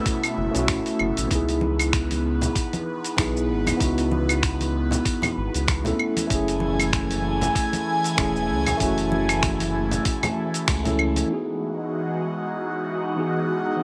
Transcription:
Already playing: B2 A3 C#4 E4 F#4
0.06 kick, open hi-hat, shaker
0.23 open hi-hat, claves, shaker
0.37 F#1
0.51 B1 A3 C#4, open hi-hat
0.55 E4 F#4, shaker
0.68 A1, finger snap, kick, open hi-hat, shaker
0.86 open hi-hat, shaker
0.99 F#1, claves
1.17 A1, open hi-hat, shaker
1.27 C#2 B3 D#4, kick, open hi-hat
1.32 E4 G#4, shaker
1.49 open hi-hat, shaker
1.61 high conga
1.79 open hi-hat, claves, shaker
1.93 finger snap, kick, open hi-hat, shaker
2.11 open hi-hat, high conga, shaker
2.41 open hi-hat, low conga, shaker
2.55 kick, open hi-hat, shaker
2.73 open hi-hat, high conga, shaker
3.04 open hi-hat, shaker
3.16 B1 B3 D#4 E4 G#4, finger snap, kick, open hi-hat, high conga, shaker
3.37 shaker
3.50 G#1
3.67 open hi-hat, high conga, low conga, claves, shaker
3.77 C#2 B3 D#4, kick, open hi-hat
3.81 E4 F#4, shaker
3.98 open hi-hat, shaker
4.11 high conga
4.29 open hi-hat, claves, shaker
4.43 finger snap, kick, open hi-hat, shaker
4.61 open hi-hat, high conga, shaker
4.91 open hi-hat, low conga, shaker
5.05 kick, open hi-hat, shaker
5.22 open hi-hat, high conga, low conga, claves, shaker
5.37 G#1
5.54 C#2, open hi-hat, shaker
5.67 finger snap, kick, open hi-hat, high conga, shaker
5.84 A3 C#4 E4 A4, open hi-hat, low conga, shaker
5.99 E3 A3 G#5, claves
6.17 open hi-hat, high conga, shaker
6.27 F#1 A3 C#4, kick, open hi-hat
6.31 E4 G#4, shaker
6.48 open hi-hat, shaker
6.60 high conga
6.80 open hi-hat, claves, shaker
6.93 finger snap, kick, open hi-hat, shaker
7.10 open hi-hat, high conga, shaker
7.41 open hi-hat, low conga, shaker
7.55 kick, open hi-hat, shaker
7.73 open hi-hat, high conga, shaker
8.04 open hi-hat, shaker
8.17 E1 A3 C#4 E4 G#4, finger snap, kick, open hi-hat, high conga, shaker
8.36 shaker
8.50 C#2
8.66 open hi-hat, high conga, low conga, claves, shaker
8.77 F#1 A3 C#4, kick, open hi-hat, shaker
8.82 E4 F#4
8.98 open hi-hat, shaker
9.12 high conga
9.29 finger snap, open hi-hat, claves, shaker
9.43 finger snap, kick, open hi-hat, shaker
9.60 open hi-hat, high conga, shaker
9.91 open hi-hat, low conga, shaker
10.05 kick, open hi-hat, shaker
10.23 open hi-hat, high conga, low conga, claves, shaker
10.54 open hi-hat, shaker
10.68 C#2, finger snap, kick, open hi-hat, high conga, shaker
10.84 A3 C#4 E4 A4, open hi-hat, low conga, shaker
10.99 claves
11.16 open hi-hat, high conga, shaker
11.26 E3 G#3 B3 D#4
11.30 E3 F#4 G#4
13.16 E3 B3 D#4 F#4 G#4
13.77 E3 B3

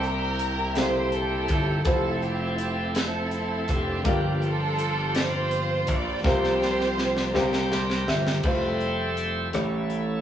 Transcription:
Already playing: C2 C3 G3 A#3 C4 G4 C5 E5
0.03 E4 G4 A#4, closed hi-hat
0.39 closed hi-hat
0.75 C3 A#3 E4 G4 A4 C5, snare, closed hi-hat
1.12 E4 A4, closed hi-hat
1.48 G1, kick, closed hi-hat
1.84 F1 F3 C4 E4 A4 C5, kick, closed hi-hat
2.22 G4, closed hi-hat
2.58 G4, closed hi-hat
2.95 C4 E4 A4, snare, closed hi-hat
3.31 closed hi-hat
3.68 F1 D4 G4, kick, closed hi-hat
3.72 A#3
4.04 G1 G2 F3 A#3 D4 F4 G4 D5, kick, closed hi-hat
4.42 D4 F4 A4, closed hi-hat
4.78 closed hi-hat
5.15 F4 C5, snare, closed hi-hat
5.51 closed hi-hat
5.87 A#1 D5, kick, closed hi-hat
6.24 C2 C3 F3 A#3 C4 F4 G4 C5, kick, snare
6.44 snare
6.62 snare
6.80 snare
6.98 snare
7.17 snare
7.33 C2 C3 G3 A#3 C4 D4 F4 G4 A#4 C5 D5, snare
7.39 C4 G4
7.53 snare
7.71 C6, snare
7.90 snare
8.08 G1 E5, snare
8.27 snare
8.42 F1 G3 A3 C4 E4 F4 A4 C5 E5, kick, crash
8.80 closed hi-hat
9.17 closed hi-hat
9.53 A1 A2 G3 A3 C#4 E4 G4 A4 C#5, cross-stick, closed hi-hat
9.90 closed hi-hat

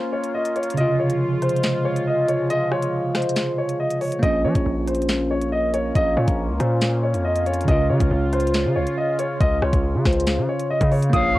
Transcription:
Already playing: A#3 C#4 F4
0.12 C#5
0.24 closed hi-hat
0.34 D#5
0.45 closed hi-hat
0.56 C#5, closed hi-hat
0.63 closed hi-hat
0.70 C#3, closed hi-hat
0.77 C3 F3 G#3 F4 D#5, closed hi-hat
0.99 C#5
1.10 closed hi-hat
1.42 C5, closed hi-hat
1.49 closed hi-hat
1.56 closed hi-hat
1.63 snare, closed hi-hat
1.85 C#5
1.96 closed hi-hat
2.07 D#5
2.28 C#5, closed hi-hat
2.50 D#5, closed hi-hat
2.72 C#5, cross-stick
2.82 closed hi-hat
3.15 C5, cross-stick, snare, closed hi-hat
3.22 closed hi-hat
3.29 closed hi-hat
3.36 snare, closed hi-hat
3.58 C#5
3.69 closed hi-hat
3.80 D#5
3.90 closed hi-hat
4.01 C#5, open hi-hat
4.12 closed hi-hat
4.19 A#1 A#3 C#4 F4 D#5, kick, closed hi-hat
4.26 C#4
4.44 F3 C#5
4.55 A#1, kick, closed hi-hat
4.66 A#1
4.87 C5, closed hi-hat
4.95 closed hi-hat
5.02 closed hi-hat
5.09 snare, closed hi-hat
5.31 C#5
5.42 closed hi-hat
5.52 D#5
5.74 C#5, closed hi-hat
5.95 A#1 D#5, kick, closed hi-hat
6.17 A#2 C#5
6.28 A#1, kick, closed hi-hat
6.49 C#2
6.60 A#2 C5, cross-stick, closed hi-hat
6.81 snare, closed hi-hat
7.03 C#5
7.14 F2, closed hi-hat
7.25 D#5
7.36 closed hi-hat
7.46 C#5, closed hi-hat
7.54 closed hi-hat
7.61 C#3, closed hi-hat
7.68 C#2 C#3 C#4 F4 D#5, kick, closed hi-hat
7.89 C#3 C#5
8.00 C#2, kick, closed hi-hat
8.11 C#2
8.33 C5, closed hi-hat
8.40 closed hi-hat
8.47 closed hi-hat
8.54 snare, closed hi-hat
8.65 C#3
8.76 C#2 C#5
8.87 closed hi-hat
8.98 D#5
9.19 C#5, closed hi-hat
9.41 C#2 D#5, kick, closed hi-hat
9.62 C#2 C#5, cross-stick
9.73 C#2, kick, closed hi-hat
9.95 C#3
10.05 C#2 C5, kick, cross-stick, snare, closed hi-hat
10.13 closed hi-hat
10.20 closed hi-hat
10.27 snare, closed hi-hat
10.38 C#3
10.49 C#5
10.60 closed hi-hat
10.70 D#5
10.81 C#3, kick, closed hi-hat
10.92 C#5, open hi-hat
11.03 closed hi-hat
11.10 A#1 A#3 C#4 F4 F5 D#6, kick, closed hi-hat, impact
11.16 C#5
11.35 F3 C#6

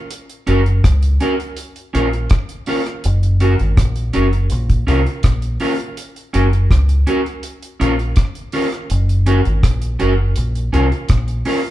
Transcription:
0.11 closed hi-hat
0.30 closed hi-hat
0.47 F#1 C#4 F#4 A#4, closed hi-hat
0.66 closed hi-hat
0.84 C#2, kick, cross-stick, closed hi-hat
1.03 closed hi-hat
1.20 C#4 F#4 A#4, closed hi-hat
1.40 closed hi-hat
1.57 closed hi-hat
1.76 closed hi-hat
1.94 A#1 C#4 F4 A#4, cross-stick, closed hi-hat
2.13 closed hi-hat
2.30 kick, cross-stick, closed hi-hat
2.49 closed hi-hat
2.66 C#4 F4 A#4, open hi-hat
2.86 cross-stick, closed hi-hat
3.04 F#1, closed hi-hat
3.23 closed hi-hat
3.40 C#4 F#4 A#4, closed hi-hat
3.59 G#1, closed hi-hat
3.77 A#1, kick, cross-stick, closed hi-hat
3.96 closed hi-hat
4.13 F#1 C#4 F#4 A#4, closed hi-hat
4.33 closed hi-hat
4.50 A#1, closed hi-hat
4.69 kick, closed hi-hat
4.87 C2 C#4 F4 A#4, cross-stick, closed hi-hat
5.06 closed hi-hat
5.23 A#1, kick, cross-stick, closed hi-hat
5.42 closed hi-hat
5.60 C#4 F4 A#4, open hi-hat
5.80 closed hi-hat
5.97 closed hi-hat
6.16 closed hi-hat
6.33 F#1 C#4 F#4 A#4, closed hi-hat
6.53 closed hi-hat
6.71 C#2, kick, cross-stick, closed hi-hat
6.89 closed hi-hat
7.07 C#4 F#4 A#4, closed hi-hat
7.26 closed hi-hat
7.43 closed hi-hat
7.63 closed hi-hat
7.80 A#1 C#4 F4 A#4, cross-stick, closed hi-hat
7.99 closed hi-hat
8.16 kick, cross-stick, closed hi-hat
8.35 closed hi-hat
8.52 C#4 F4 A#4, open hi-hat
8.72 cross-stick, closed hi-hat
8.90 F#1, closed hi-hat
9.09 closed hi-hat
9.26 C#4 F#4 A#4, closed hi-hat
9.45 G#1, closed hi-hat
9.63 A#1, kick, cross-stick, closed hi-hat
9.82 closed hi-hat
9.99 F#1 C#4 F#4 A#4, closed hi-hat
10.36 A#1, closed hi-hat
10.55 closed hi-hat
10.73 C2 C#4 F4 A#4, cross-stick, closed hi-hat
10.92 closed hi-hat
11.09 A#1, kick, cross-stick, closed hi-hat
11.28 closed hi-hat
11.45 C#4 F4 A#4, open hi-hat

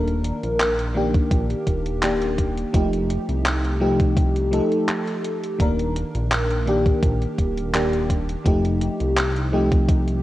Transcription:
Already playing: D#1 D#3 A#3 D4 A#4
0.08 closed hi-hat
0.24 closed hi-hat
0.43 A#1, closed hi-hat
0.60 clap, closed hi-hat
0.79 closed hi-hat
0.94 D#3 A#3 D4 G4
1.14 kick, closed hi-hat
1.31 A#1, kick, closed hi-hat
1.50 closed hi-hat
1.67 D#1, kick, closed hi-hat
1.86 closed hi-hat
2.02 D#3 A#3 D4 G4, clap, closed hi-hat
2.22 closed hi-hat
2.38 kick, closed hi-hat
2.57 closed hi-hat
2.73 F1 F3 A3 D#4 G4, kick, closed hi-hat
2.93 closed hi-hat
3.10 closed hi-hat
3.29 C2, closed hi-hat
3.46 clap, closed hi-hat
3.65 closed hi-hat
3.80 F3 A3 D#4 G4
4.00 kick, closed hi-hat
4.17 kick, closed hi-hat
4.36 closed hi-hat
4.51 F3 A3 D#4 A4, closed hi-hat
4.72 closed hi-hat
4.89 clap, closed hi-hat
5.08 closed hi-hat
5.24 closed hi-hat
5.43 closed hi-hat
5.58 D#1 D#3 A#3 D4 A#4, kick, closed hi-hat
5.79 closed hi-hat
5.96 closed hi-hat
6.14 A#1, closed hi-hat
6.32 clap, closed hi-hat
6.51 closed hi-hat
6.66 D#3 A#3 D4 G4, closed hi-hat
6.86 kick, closed hi-hat
7.03 A#1, kick, closed hi-hat
7.22 closed hi-hat
7.38 D#1, kick, closed hi-hat
7.58 closed hi-hat
7.73 D#3 A#3 D4 G4, clap, closed hi-hat
7.93 closed hi-hat
8.10 kick, closed hi-hat
8.29 closed hi-hat
8.44 F1 F3 A3 D#4 G4, kick, closed hi-hat
8.65 closed hi-hat
8.81 closed hi-hat
9.00 C2, closed hi-hat
9.17 clap, closed hi-hat
9.36 closed hi-hat
9.52 F3 A3 D#4 G4
9.72 kick, closed hi-hat
9.88 kick, closed hi-hat
10.08 closed hi-hat

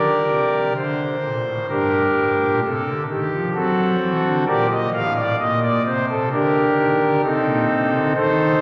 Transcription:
Already playing: D3 G4 A#4 D5
0.29 C3
0.76 D3 C5
1.22 A#2
1.46 A2
1.69 G2 D4 G4 A#4
2.15 A2
2.41 A#2
2.64 C3 A4
2.86 D3
3.09 D#3 G4
3.34 F3
3.54 F#3 C4 F#4 A4
4.01 E3
4.25 D3
4.47 A#2 G4 A#4 D5
4.71 D#5
4.94 A2 F5
5.16 D5
5.40 A#2 D#5
5.63 D5
5.86 C3 C5
6.10 A4
6.32 D3 D4 G4 A#4
6.78 D#3
7.00 D3
7.23 C3 C4 D#4 A4
7.46 A#2
7.70 C3
7.93 D3
8.15 D#3 D#4 A4 C5

